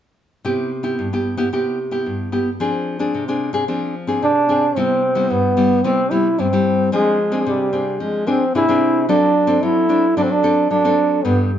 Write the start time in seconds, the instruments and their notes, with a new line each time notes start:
0.45 nylon-string guitar C3 B3 E4 G4
0.83 nylon-string guitar B3 E4 G4
0.99 nylon-string guitar G2
1.13 nylon-string guitar B3 E4 G4
1.37 nylon-string guitar B3 E4 G4
1.53 nylon-string guitar C3 B3 E4 G4
1.91 nylon-string guitar B3 E4 G4
2.06 nylon-string guitar G2
2.32 nylon-string guitar B3 E4 G4
2.60 nylon-string guitar F3 C4 D4 G#4
2.99 nylon-string guitar C4 D4 G#4
3.14 nylon-string guitar C3
3.28 nylon-string guitar C4 D4 G#4
3.53 nylon-string guitar C4 D4 G#4
3.68 nylon-string guitar F3 C4 D4 G#4
4.07 nylon-string guitar C4 D4 G#4
4.22 nylon-string guitar C3, trombone D4
4.49 nylon-string guitar C4 D4 G#4
4.76 nylon-string guitar C3 G3 B3 E4, trombone C4
5.15 nylon-string guitar G3 B3 E4
5.30 nylon-string guitar G2, trombone B3
5.57 nylon-string guitar G3 B3 E4
5.84 nylon-string guitar C3 G3 B3 E4, trombone C4
6.11 nylon-string guitar G3 B3 E4, trombone E4
6.38 nylon-string guitar G2 G3 B3 E4, trombone C4
6.53 nylon-string guitar G3 E4
6.92 nylon-string guitar F3 C4 D4 G#4, trombone G#3
7.32 nylon-string guitar C4 D4 G#4
7.47 nylon-string guitar C3, trombone G3
7.73 nylon-string guitar C4 D4 G#4
8.00 nylon-string guitar F3, trombone G#3
8.27 nylon-string guitar C4 D4 G#4, trombone C4
8.55 nylon-string guitar C3 C4 D4 G#4, trombone E4
8.68 nylon-string guitar C4 D4 G#4
9.09 nylon-string guitar F#3 C4 D4 A4, trombone D4
9.47 nylon-string guitar C4 D4 A4
9.63 nylon-string guitar F#3, trombone E4
9.89 nylon-string guitar C4 D4 A4
10.17 nylon-string guitar F#3 C4 D4 A4, trombone D4
10.23 trombone C4
10.31 trombone D4
10.43 nylon-string guitar C4 D4 A4
10.70 nylon-string guitar F#3, trombone D4
10.85 nylon-string guitar C4 D4 A4
11.25 nylon-string guitar G2 G3 B3 D4, trombone B3